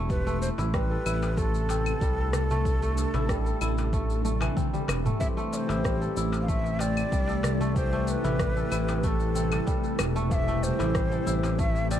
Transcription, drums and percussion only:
0.10 kick, shaker
0.27 shaker
0.42 shaker
0.58 darbuka tek, shaker
0.74 kick, cross-stick, shaker
1.06 claves, shaker
1.22 darbuka tek, shaker
1.37 kick, shaker
1.54 shaker
1.69 darbuka tek, shaker
1.86 claves, shaker
2.01 kick, shaker
2.33 cross-stick, darbuka ka, darbuka tek, darbuka dum, shaker
2.50 darbuka dum, shaker
2.65 kick, shaker
2.82 shaker
2.97 darbuka tek, shaker
3.14 darbuka tek, darbuka dum, shaker
3.29 kick, cross-stick, shaker
3.46 shaker
3.61 darbuka ka, claves, shaker
3.78 darbuka ka, darbuka tek, shaker
3.93 kick, shaker
4.10 shaker
4.25 high tom, darbuka ka, shaker
4.41 darbuka tek, darbuka dum, claves, shaker
4.57 kick, mid tom, darbuka ka, shaker
4.74 mid tom, shaker
4.88 cross-stick, darbuka tek, claves, shaker
5.06 mid tom, shaker
5.21 kick, shaker
5.38 shaker
5.53 darbuka ka, shaker
5.69 darbuka tek, shaker
5.85 kick, cross-stick, shaker
6.02 shaker
6.17 shaker
6.32 darbuka ka, darbuka tek, shaker
6.48 kick, shaker
6.64 darbuka ka, shaker
6.79 darbuka tek, shaker
6.97 claves, shaker
7.12 kick, shaker
7.28 darbuka ka, shaker
7.43 cross-stick, darbuka tek, darbuka dum, shaker
7.60 darbuka dum, shaker
7.76 kick, shaker
7.93 shaker
8.08 darbuka ka, shaker
8.24 darbuka tek, darbuka dum, shaker
8.39 kick, cross-stick, shaker
8.57 shaker
8.72 claves, shaker
8.88 darbuka ka, darbuka tek, shaker
9.04 kick, shaker
9.20 shaker
9.36 shaker
9.52 darbuka tek, darbuka dum, claves, shaker
9.67 kick, shaker
9.84 shaker
9.99 cross-stick, darbuka tek, claves, shaker
10.16 shaker
10.31 kick, shaker
10.48 shaker
10.63 darbuka ka, shaker
10.80 darbuka tek, shaker
10.95 kick, cross-stick, shaker
11.12 shaker
11.27 shaker
11.43 darbuka ka, darbuka tek, shaker
11.59 kick, shaker
11.75 darbuka ka, shaker
11.91 darbuka tek, shaker

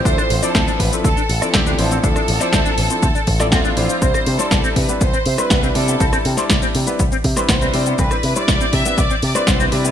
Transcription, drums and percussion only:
0.05 kick, closed hi-hat, shaker
0.18 cross-stick, closed hi-hat, shaker
0.30 open hi-hat
0.43 closed hi-hat, shaker
0.55 kick, snare, closed hi-hat, shaker
0.68 closed hi-hat, shaker
0.80 kick, open hi-hat
0.93 closed hi-hat, shaker
1.04 kick, closed hi-hat, shaker
1.17 closed hi-hat, shaker
1.29 open hi-hat
1.42 cross-stick, closed hi-hat, shaker
1.54 kick, snare, closed hi-hat, shaker
1.66 closed hi-hat, shaker
1.79 open hi-hat
1.91 closed hi-hat, shaker
2.04 kick, closed hi-hat, shaker
2.16 cross-stick, closed hi-hat, shaker
2.28 open hi-hat
2.40 snare, closed hi-hat, shaker
2.53 kick, snare, closed hi-hat, shaker
2.65 closed hi-hat, shaker
2.78 open hi-hat
2.90 closed hi-hat, shaker
3.02 kick, closed hi-hat, shaker
3.15 closed hi-hat, shaker
3.27 kick, open hi-hat
3.40 cross-stick, snare, closed hi-hat, shaker
3.52 kick, snare, closed hi-hat, shaker
3.64 closed hi-hat, shaker
3.77 open hi-hat
3.89 closed hi-hat, shaker
4.02 kick, closed hi-hat, shaker
4.14 cross-stick, closed hi-hat, shaker
4.26 open hi-hat
4.39 closed hi-hat, shaker
4.51 kick, snare, closed hi-hat, shaker
4.64 closed hi-hat, shaker
4.76 kick, open hi-hat
4.89 closed hi-hat, shaker
5.01 kick, closed hi-hat, shaker
5.13 closed hi-hat, shaker
5.26 open hi-hat
5.38 cross-stick, closed hi-hat, shaker
5.50 kick, snare, closed hi-hat, shaker
5.63 closed hi-hat, shaker
5.75 open hi-hat
5.88 closed hi-hat, shaker
6.00 kick, closed hi-hat, shaker
6.13 cross-stick, closed hi-hat, shaker
6.25 open hi-hat
6.37 snare, closed hi-hat, shaker
6.50 kick, snare, closed hi-hat, shaker
6.62 closed hi-hat, shaker
6.75 open hi-hat
6.87 closed hi-hat, shaker
6.99 kick, closed hi-hat, shaker
7.12 closed hi-hat, shaker
7.24 kick, open hi-hat
7.36 cross-stick, snare, closed hi-hat, shaker
7.49 kick, snare, closed hi-hat, shaker
7.61 closed hi-hat, shaker
7.74 open hi-hat
7.86 closed hi-hat, shaker
7.98 kick, closed hi-hat, shaker
8.11 cross-stick, closed hi-hat, shaker
8.23 open hi-hat
8.36 closed hi-hat, shaker
8.48 kick, snare, closed hi-hat, shaker
8.61 closed hi-hat, shaker
8.73 kick, open hi-hat
8.85 closed hi-hat, shaker
8.98 kick, closed hi-hat, shaker
9.10 closed hi-hat, shaker
9.22 open hi-hat
9.35 cross-stick, closed hi-hat, shaker
9.47 kick, snare, closed hi-hat, shaker
9.60 closed hi-hat, shaker
9.72 open hi-hat
9.85 closed hi-hat, shaker

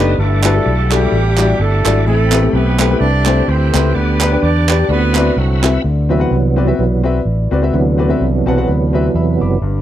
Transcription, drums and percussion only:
0.44 clap
0.91 clap
1.37 clap
1.86 clap
2.32 clap
2.79 clap
3.26 clap
3.74 clap
4.21 clap
4.69 clap
5.15 clap
5.64 clap

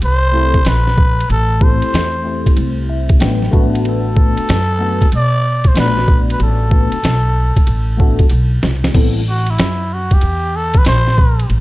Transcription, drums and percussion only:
0.02 ride
0.54 kick, ride
0.65 snare, hi-hat pedal, ride
0.87 snare
0.98 kick
1.20 ride
1.30 ride
1.61 kick
1.82 ride
1.94 snare, hi-hat pedal, ride
2.46 kick, ride
2.57 ride
3.09 kick, ride
3.20 snare, hi-hat pedal, ride
3.42 snare
3.53 kick
3.75 ride
3.85 ride
4.17 kick
4.37 ride
4.49 snare, hi-hat pedal, ride
5.02 kick, ride
5.12 ride
5.64 kick, ride
5.75 snare, hi-hat pedal, ride
5.97 snare
6.08 kick
6.30 ride
6.40 ride
6.71 kick
6.92 ride
7.04 snare, hi-hat pedal, ride
7.57 kick, ride
7.67 ride
8.00 kick
8.19 kick, ride
8.29 hi-hat pedal, ride
8.63 snare
8.84 snare, ride
8.94 kick, crash, ride
9.46 ride
9.58 snare, hi-hat pedal, ride
10.11 kick, ride
10.21 ride
10.74 kick, ride
10.85 snare, hi-hat pedal, ride
11.07 snare
11.18 kick
11.39 ride
11.50 ride

